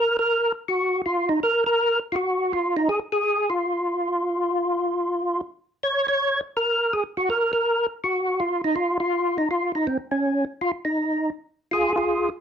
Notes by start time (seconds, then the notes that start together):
Already playing: A#4
0.19 A#4
0.68 F#4
1.06 F4
1.29 D#4
1.43 A#4
1.66 A#4
2.12 F4 F#4
2.53 F4
2.77 D#4
2.89 G#4
3.12 G#4
3.50 F4
5.83 C#5
6.08 C#5
6.57 A#4
6.93 G#4
7.17 F#4
7.30 A#4
7.53 A#4
8.04 F#4
8.40 F4
8.64 D#4
8.76 F4
9.00 F4
9.38 D#4
9.51 F4
9.75 D#4
9.87 C4
10.11 C#4
10.61 F4
10.85 D#4
11.71 F4 G#4
11.96 F4 G#4